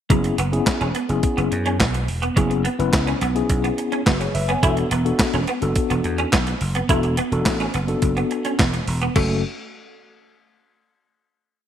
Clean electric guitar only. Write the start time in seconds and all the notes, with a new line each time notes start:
0.10 F#3
0.24 muted clean electric guitar stroke
0.38 B3
0.67 muted clean electric guitar stroke
0.81 C#4
0.95 B3
1.37 B3
1.52 muted clean electric guitar stroke
1.66 C#4
1.80 B3
1.94 muted clean electric guitar stroke
2.22 B3
2.36 F#3
2.50 muted clean electric guitar stroke
2.65 B3
2.93 muted clean electric guitar stroke
3.07 C#4
3.22 B3
3.64 B3
3.78 muted clean electric guitar stroke
3.92 C#4
4.07 B3
4.21 muted clean electric guitar stroke
4.49 B3
4.63 E4
4.77 muted clean electric guitar stroke
4.91 B3
5.20 muted clean electric guitar stroke
5.34 C#4
5.48 B3
5.90 B3
6.04 muted clean electric guitar stroke
6.18 C#4
6.33 B3
6.47 muted clean electric guitar stroke
6.75 B3
6.89 E4
7.04 muted clean electric guitar stroke
7.17 B3
7.46 muted clean electric guitar stroke
7.60 C#4
7.74 B3
8.17 B3
8.31 muted clean electric guitar stroke
8.45 C#4
8.59 B3
8.73 muted clean electric guitar stroke
9.02 B3
9.16 A3